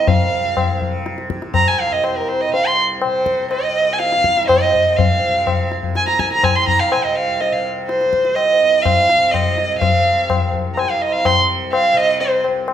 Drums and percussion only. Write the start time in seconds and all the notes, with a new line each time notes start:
0.08 tabla tin, tabla ge
0.57 tabla na, tabla ge
0.81 tabla ge
1.06 tabla te
1.18 tabla te
1.30 tabla ke
1.42 tabla te
1.54 tabla na, tabla ge
2.04 tabla na
2.29 tabla na
2.54 tabla tin
3.02 tabla na
3.26 tabla ke
3.51 tabla na
4.00 tabla te
4.12 tabla te
4.24 tabla ke
4.37 tabla te
4.49 tabla na, tabla ge
4.74 tabla ge
4.99 tabla tin, tabla ge
5.47 tabla na, tabla ge
5.71 tabla te
5.83 tabla ge
5.95 tabla te
6.07 tabla te
6.19 tabla ke
6.31 tabla te
6.43 tabla na, tabla ge
6.67 tabla ge
6.92 tabla na
7.41 tabla tin
7.89 tabla te
8.01 tabla te
8.13 tabla ke
8.25 tabla te
8.36 tabla na
8.85 tabla na, tabla ge
9.10 tabla te
9.34 tabla na, tabla ge
9.58 tabla te
9.82 tabla tin, tabla ge
10.30 tabla na, tabla ge
10.53 tabla ge
10.77 tabla na
11.25 tabla na, tabla ge
11.73 tabla na
12.21 tabla tin
12.44 tabla na
12.68 tabla na